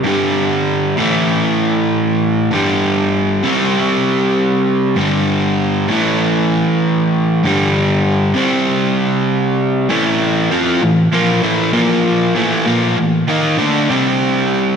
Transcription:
\new Staff \with { instrumentName = "Overdriven electric guitar" } { \clef bass \time 4/4 \key a \minor \tempo 4 = 98 <g, d g>4. <a, e a>2~ <a, e a>8 | <g, d g>4. <c g c'>2~ <c g c'>8 | <g, d g>4. <a, e a>2~ <a, e a>8 | <g, d g>4. <c g c'>2~ <c g c'>8 |
<a, e a>4 <f c' f'>8 <a, e>8 <bes, f bes>8 <a, e a>8 <bes, f bes>4 | <a, e a>8 <bes, f bes>8 <a, e>8 <dis bes dis'>8 <d a d'>8 <c g c'>4. | }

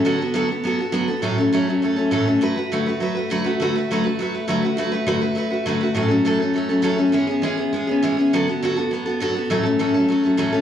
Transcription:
\new Staff \with { instrumentName = "Steel-string acoustic guitar" } { \time 4/4 \key d \lydian \tempo 4 = 204 <d fis b fis' a'>8 <b fis' a'>8 <d fis b fis' a'>8 <b fis' a'>8 <fis b fis' a'>8 <b fis' a'>8 <d fis b fis' a'>8 <b fis' a'>8 | <a, e fis a cis' a'>8 <fis a cis' a'>8 <a, e fis a cis' a'>8 <fis a cis' a'>8 <fis a cis' a'>8 <fis a cis' a'>8 <a, e fis a cis' a'>8 <fis a cis' a'>8 | <d fis a fis' b'>8 <a fis' b'>8 <d fis a fis' b'>8 <a fis' b'>8 <fis a fis' b'>8 <a fis' b'>8 <d fis a fis' b'>8 <a fis' b'>8 | <d fis a fis' b'>8 <a fis' b'>8 <d fis a fis' b'>8 <a fis' b'>8 <fis a fis' b'>8 <a fis' b'>8 <d fis a fis' b'>8 <a fis' b'>8 |
<d fis a fis' b'>8 <a fis' b'>8 <d fis a fis' b'>8 <a fis' b'>8 <fis a fis' b'>8 <a fis' b'>8 <d fis a fis' b'>8 <a fis' b'>8 | <a, e fis a cis' a'>8 <fis a cis' a'>8 <a, e fis a cis' a'>8 <fis a cis' a'>8 <fis a cis' a'>8 <fis a cis' a'>8 <a, e fis a cis' a'>8 <fis a cis' a'>8 | <e gis b cis' gis'>8 <b cis' gis'>8 <e gis b cis' gis'>8 <b cis' gis'>8 <gis b cis' gis'>8 <b cis' gis'>8 <e gis b cis' gis'>8 <b cis' gis'>8 | <d fis b fis' a'>8 <b fis' a'>8 <d fis b fis' a'>8 <b fis' a'>8 <fis b fis' a'>8 <b fis' a'>8 <d fis b fis' a'>8 <b fis' a'>8 |
<a, e fis a cis' a'>8 <fis a cis' a'>8 <a, e fis a cis' a'>8 <fis a cis' a'>8 <fis a cis' a'>8 <fis a cis' a'>8 <a, e fis a cis' a'>8 <fis a cis' a'>8 | }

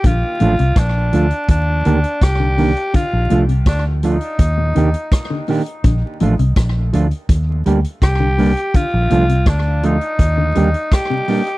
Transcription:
<<
  \new Staff \with { instrumentName = "Tenor saxophone" } { \time 4/4 \key bes \major \tempo 4 = 83 f'4 d'4 d'4 g'4 | f'8 r8 d'8 ees'2 r8 | r2. g'4 | f'4 d'8 ees'4. g'4 | }
  \new Staff \with { instrumentName = "Clean electric guitar" } { \time 4/4 \key bes \major r8 <f a d' f'>8 r8 <f a d' f'>8 r8 <ees bes d' g'>8 r8 <ees bes d' g'>8 | r8 <f a d' f'>8 r8 <f a d' f'>8 r8 <ees bes d' g'>8 r8 <ees bes d' g'>8 | r8 <f a d' f'>8 r8 <f a d' f'>8 r8 <g bes d' g'>8 r8 <g bes d' g'>8 | r8 <f a d' f'>8 r8 <f a d' f'>8 r8 <g bes d' g'>8 r8 <g bes d' g'>8 | }
  \new Staff \with { instrumentName = "Clean electric guitar" } { \clef bass \time 4/4 \key bes \major d16 r16 bes,16 c16 r2 r16 d16 d16 r16 | d16 r16 bes,16 c16 r4 r16 bes,16 c16 r8 d16 bes,16 r16 | d16 r16 bes,16 c16 r2 r16 d16 d16 r16 | d16 r16 bes,16 c16 r4 r16 d16 d16 r8 c16 bes,16 r16 | }
  \new Staff \with { instrumentName = "Fingered electric bass" } { \clef bass \time 4/4 \key bes \major bes,,16 r16 a,,16 c,16 bes,,8 d,16 r16 ees,8 d,16 r16 c,8. r16 | r16 bes,,16 c,8 d,8. r16 ees,8 ees,16 r4 r16 | bes,,16 r16 a,,16 c,16 bes,,8 d,16 r16 ees,8 d,16 r16 c,8. r16 | r16 bes,,16 c,8 d,8. r16 ees,8 ees,16 r4 r16 | }
  \new DrumStaff \with { instrumentName = "Drums" } \drummode { \time 4/4 <hh bd>8 hh16 hh16 <hh bd ss>8 hh16 hh16 <hh bd>8 hh16 hh16 <hh bd ss>8 hho16 hh16 | <hh bd>8 hh16 hh16 <hh bd ss>8 hh16 hh16 <hh bd>8 hh16 hh16 <hh bd ss>8 hho16 hh16 | <hh bd>8 hh16 hh16 <hh bd ss>8 hh16 hh16 <hh bd>8 hh16 hh16 <hh bd ss>8 hho16 hh16 | <hh bd>8 hh16 hh16 <hh bd ss>8 hh16 hh16 <hh bd>8 hh16 hh16 <hh bd ss>8 hho16 hh16 | }
>>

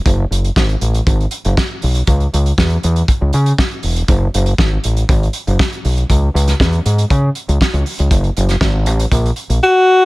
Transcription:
<<
  \new Staff \with { instrumentName = "Tenor saxophone" } { \time 4/4 \key fis \dorian \tempo 4 = 119 r1 | r1 | r1 | r1 |
r2. fis'4 | }
  \new Staff \with { instrumentName = "Fingered electric bass" } { \clef bass \time 4/4 \key fis \dorian fis,,8 fis,,8 gis,,8 a,,8 gis,,8 r16 fis,,16 r8 b,,8 | cis,8 cis,8 e,8 e,8 r16 cis,16 cis8 r8 e,,8 | fis,,8 fis,,8 gis,,8 a,,8 gis,,8 r16 fis,,16 r8 b,,8 | cis,8 cis,8 e,8 gis,8 cis8 r16 cis,16 r16 cis,16 r16 cis,16 |
fis,,8 fis,,8 gis,,8 a,,8 ais,,8 r16 ais,,16 r4 | }
  \new DrumStaff \with { instrumentName = "Drums" } \drummode { \time 4/4 <hh bd>8 hh16 hh16 <bd sn>16 hh16 hh16 hh16 <hh bd>16 hh16 hh16 hh16 <bd sn>8 hho16 hh16 | <hh bd>16 hh16 hh16 hh16 <bd sn>16 hh16 hh16 hh16 <hh bd>8 hh16 hh16 <bd sn>16 hh16 hho16 hh16 | <hh bd>8 hh16 hh16 <bd sn>8 hh16 hh16 <hh bd>16 hh16 hh16 hh16 <bd sn>16 hh16 hho16 hh16 | <hh bd>8 hh16 <hh sn>16 <bd sn>16 hh16 hh16 hh16 <hh bd>8 hh16 hh16 <bd sn>16 hh16 hho16 hh16 |
<hh bd>16 hh16 hh16 <hh sn>16 <bd sn>8 hh16 hh16 <hh bd>16 hh16 hh16 hh16 r4 | }
>>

